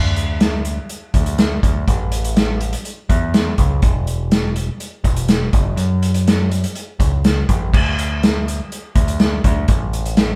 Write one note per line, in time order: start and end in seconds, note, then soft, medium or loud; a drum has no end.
0.00 0.78 D2 medium
0.16 closed hi-hat medium
0.41 snare loud
0.41 closed hi-hat medium
0.65 closed hi-hat medium
0.89 closed hi-hat medium
1.14 1.57 D2 medium
1.14 kick medium
1.14 closed hi-hat medium
1.26 closed hi-hat medium
1.38 snare loud
1.38 closed hi-hat medium
1.63 1.84 D2 medium
1.63 kick loud
1.63 closed hi-hat medium
1.88 2.74 A1 medium
1.88 kick loud
1.88 closed hi-hat medium
2.12 closed hi-hat medium
2.24 closed hi-hat medium
2.36 snare loud
2.36 closed hi-hat medium
2.61 closed hi-hat medium
2.73 closed hi-hat medium
2.85 closed hi-hat medium
3.09 3.53 E2 medium
3.09 kick medium
3.09 closed hi-hat medium
3.34 snare loud
3.34 closed hi-hat medium
3.58 3.80 C#2 medium
3.58 kick medium
3.58 closed hi-hat medium
3.82 4.69 E1 medium
3.82 kick loud
3.82 closed hi-hat medium
4.07 closed hi-hat medium
4.31 snare loud
4.31 closed hi-hat medium
4.56 closed hi-hat medium
4.80 closed hi-hat medium
5.04 5.48 E1 medium
5.04 kick medium
5.04 closed hi-hat medium
5.16 closed hi-hat medium
5.28 snare loud
5.28 closed hi-hat medium
5.53 5.75 F#1 medium
5.53 kick loud
5.53 closed hi-hat medium
5.76 6.64 F#2 medium
5.76 closed hi-hat medium
6.03 closed hi-hat medium
6.14 closed hi-hat medium
6.27 snare loud
6.27 closed hi-hat medium
6.51 closed hi-hat medium
6.64 closed hi-hat medium
6.75 closed hi-hat medium
6.99 7.43 C#2 medium
6.99 kick medium
6.99 closed hi-hat medium
7.24 snare loud
7.24 closed hi-hat medium
7.49 7.71 A1 medium
7.49 kick medium
7.49 closed hi-hat medium
7.73 8.60 D2 medium
7.73 kick loud
7.73 crash loud
7.99 closed hi-hat medium
8.23 snare loud
8.23 closed hi-hat medium
8.48 closed hi-hat medium
8.72 closed hi-hat medium
8.96 9.38 D2 medium
8.96 kick medium
8.96 closed hi-hat medium
9.08 closed hi-hat medium
9.20 snare loud
9.20 closed hi-hat medium
9.44 9.66 D2 medium
9.44 kick medium
9.44 closed hi-hat medium
9.68 10.35 A1 medium
9.68 kick loud
9.68 closed hi-hat medium
9.93 closed hi-hat medium
10.06 closed hi-hat medium
10.17 snare loud
10.17 closed hi-hat medium